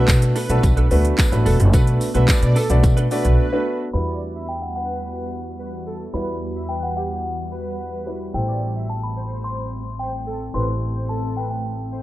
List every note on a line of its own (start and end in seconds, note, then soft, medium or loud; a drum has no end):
0.00 0.40 A3 medium
0.00 3.90 A3 medium
0.00 0.40 B3 medium
0.00 3.90 B3 medium
0.00 0.12 D4 medium
0.00 0.40 D4 medium
0.00 3.90 D4 medium
0.00 0.40 F#4 medium
0.00 0.11 A4 medium
0.00 0.11 B4 medium
0.00 0.40 B4 medium
0.08 0.29 B2 loud
0.08 kick loud
0.08 clap loud
0.08 tambourine loud
0.08 shaker medium
0.22 muted clean electric guitar stroke medium
0.22 closed hi-hat medium
0.22 shaker medium
0.36 0.57 D4 medium
0.36 0.50 A4 medium
0.36 0.88 B4 medium
0.36 0.48 B4 loud
0.36 open hi-hat medium
0.36 tambourine soft
0.36 shaker medium
0.49 0.60 B1 medium
0.49 0.83 A3 medium
0.49 0.83 B3 medium
0.49 0.83 D4 medium
0.49 0.84 F#4 medium
0.49 0.84 A4 medium
0.49 muted clean electric guitar stroke soft
0.49 closed hi-hat medium
0.49 shaker medium
0.63 0.84 B1 loud
0.63 muted clean electric guitar stroke medium
0.63 kick loud
0.63 tambourine soft
0.63 shaker medium
0.77 0.90 D4 medium
0.77 0.90 A4 medium
0.77 0.91 B4 medium
0.77 closed hi-hat medium
0.77 shaker medium
0.91 1.11 D2 loud
0.91 1.25 A3 medium
0.91 1.25 B3 medium
0.91 1.25 D4 medium
0.91 1.25 F#4 medium
0.91 1.25 B4 medium
0.91 muted clean electric guitar stroke soft
0.91 open hi-hat medium
0.91 shaker medium
1.05 muted clean electric guitar stroke soft
1.05 closed hi-hat medium
1.05 shaker medium
1.18 1.31 B4 medium
1.18 kick loud
1.18 clap loud
1.18 tambourine medium
1.18 shaker medium
1.32 1.42 A1 loud
1.32 1.66 A3 medium
1.32 1.66 B3 medium
1.32 1.66 D4 medium
1.32 1.66 F#4 medium
1.32 1.66 B4 medium
1.32 muted clean electric guitar stroke soft
1.32 closed hi-hat soft
1.32 shaker medium
1.46 1.56 E1 medium
1.46 1.67 D4 medium
1.46 1.58 A4 medium
1.46 1.60 A4 medium
1.46 1.58 B4 medium
1.46 open hi-hat medium
1.46 tambourine medium
1.46 shaker medium
1.60 1.70 F#1 loud
1.60 closed hi-hat medium
1.60 shaker medium
1.73 1.94 B1 loud
1.73 2.07 A3 medium
1.73 2.07 B3 medium
1.73 1.99 D4 medium
1.73 2.07 D4 medium
1.73 2.07 F#4 medium
1.73 1.99 A4 medium
1.73 1.86 B4 medium
1.73 2.07 B4 medium
1.73 2.00 B4 loud
1.73 kick loud
1.73 tambourine soft
1.73 shaker medium
1.87 closed hi-hat medium
1.87 shaker medium
2.01 muted clean electric guitar stroke soft
2.01 open hi-hat medium
2.01 tambourine soft
2.01 shaker medium
2.14 2.25 B1 medium
2.14 2.60 A3 medium
2.14 2.60 B3 medium
2.14 2.60 D4 medium
2.14 2.32 D4 medium
2.14 2.60 F#4 medium
2.14 2.31 A4 medium
2.14 2.31 B4 medium
2.14 2.60 B4 medium
2.14 2.27 E5 medium
2.14 closed hi-hat medium
2.14 shaker medium
2.28 2.53 D5 medium
2.28 kick loud
2.28 clap loud
2.28 tambourine loud
2.28 shaker medium
2.42 2.52 B2 medium
2.42 muted clean electric guitar stroke medium
2.42 closed hi-hat medium
2.42 shaker medium
2.56 2.77 D4 medium
2.56 2.69 A4 medium
2.56 2.70 A4 medium
2.56 2.68 B4 medium
2.56 open hi-hat medium
2.56 tambourine soft
2.56 shaker medium
2.70 2.80 B1 medium
2.70 3.04 A3 medium
2.70 3.04 B3 medium
2.70 3.04 D4 medium
2.70 3.04 F#4 medium
2.70 3.04 D5 medium
2.70 muted clean electric guitar stroke medium
2.70 closed hi-hat medium
2.70 shaker medium
2.83 3.04 B2 loud
2.83 muted clean electric guitar stroke soft
2.83 kick loud
2.83 tambourine soft
2.83 shaker medium
2.97 3.10 D4 medium
2.97 3.10 A4 medium
2.97 3.11 B4 medium
2.97 closed hi-hat medium
2.97 shaker medium
3.11 3.45 A3 medium
3.11 3.45 B3 medium
3.11 3.45 D4 medium
3.11 3.45 F#4 medium
3.11 3.36 B4 medium
3.11 3.45 D5 medium
3.11 muted clean electric guitar stroke soft
3.11 open hi-hat medium
3.11 tambourine soft
3.11 shaker medium
3.24 3.35 B1 medium
3.24 muted clean electric guitar stroke medium
3.24 closed hi-hat medium
3.24 shaker medium
3.39 3.78 B4 medium
3.52 3.86 A3 medium
3.52 3.86 B3 medium
3.52 3.86 D4 medium
3.52 3.86 F#4 medium
3.52 3.86 B4 medium
3.93 6.10 E2 medium
3.93 8.30 E3 medium
3.93 6.10 G3 medium
3.93 10.50 G3 medium
3.93 8.30 B3 medium
3.93 6.10 E4 medium
3.93 8.30 F#4 medium
3.93 6.10 F#4 medium
3.93 6.10 B4 medium
3.93 4.50 B5 loud
4.08 4.20 D5 medium
4.35 4.47 E5 medium
4.49 4.63 G5 medium
4.62 4.75 F#5 medium
4.76 5.28 B4 medium
4.76 5.82 F#5 medium
5.59 5.71 B4 medium
5.86 5.99 A4 medium
6.13 8.30 E2 medium
6.13 8.02 G3 medium
6.13 8.03 E4 medium
6.13 8.03 F#4 medium
6.13 6.26 B4 medium
6.13 8.03 B4 medium
6.13 6.70 B5 loud
6.56 6.68 E5 medium
6.69 6.94 B4 medium
6.69 6.83 G5 medium
6.83 6.96 F#5 medium
6.96 7.09 G4 medium
6.96 8.03 F#5 medium
7.51 7.76 B4 medium
7.79 8.18 B4 medium
8.06 8.34 G3 soft
8.06 8.33 E4 soft
8.06 8.34 F#4 soft
8.06 8.34 B4 medium
8.34 10.50 A1 medium
8.34 10.50 A3 medium
8.34 12.03 A3 medium
8.34 12.03 C4 medium
8.34 10.50 E4 medium
8.34 10.50 G4 medium
8.34 10.51 C5 medium
8.34 8.91 G5 medium
8.48 8.60 D5 medium
8.75 8.88 E5 medium
8.89 9.03 A5 medium
9.03 9.42 B5 medium
9.17 9.68 C5 medium
9.44 9.95 C6 loud
9.99 10.12 C5 medium
9.99 10.38 G5 medium
10.27 10.39 A4 medium
10.54 12.03 A1 medium
10.54 12.03 A3 medium
10.54 12.03 E4 medium
10.54 12.03 G4 medium
10.54 12.03 A4 medium
10.54 10.66 B4 medium
10.54 12.03 C5 medium
10.54 11.11 C6 loud
10.96 11.08 C5 medium
11.09 11.34 A4 medium
11.09 11.38 A5 medium
11.37 11.49 B4 medium
11.37 11.43 G5 medium
11.51 12.03 G5 medium
11.92 12.03 C5 medium